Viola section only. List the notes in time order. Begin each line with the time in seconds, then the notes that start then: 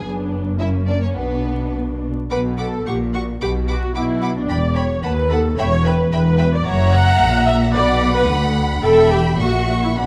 0.04 B3 D4
0.59 A#3 C#4
1.16 B3 D4
2.31 B4
2.59 A4
2.86 G4
3.14 F#4
3.41 G4
3.69 F#4
3.95 E4
4.36 D4
4.48 D5
4.76 C#5
5.04 B4
5.31 A4
5.58 C#5
5.86 B4
6.12 B4
6.55 D5
6.67 C#5
6.93 F#5
7.47 E5
7.74 D5
8.16 B4
8.83 A4
9.11 G4
9.39 F#4
9.83 E4
9.95 D4